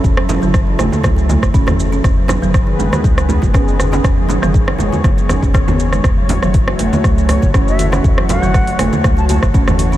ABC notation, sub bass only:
X:1
M:4/4
L:1/16
Q:"Swing 16ths" 1/4=120
K:F#dor
V:1 name="Sub bass" clef=bass
F,,,3 F,,,3 F,,, z C,,3 F,,,2 F,,,3 | F,,,3 F,,,3 F,,, z C,,3 F,,,2 F,,,3 | F,,,3 F,,,3 F,,, z F,,,3 F,,,2 F,,,3 | F,,,3 F,,,3 F,,, z C,,3 F,,,2 F,,,3 |
F,,,3 F,,,3 F,,, z C,,3 F,,,2 F,,,3 |]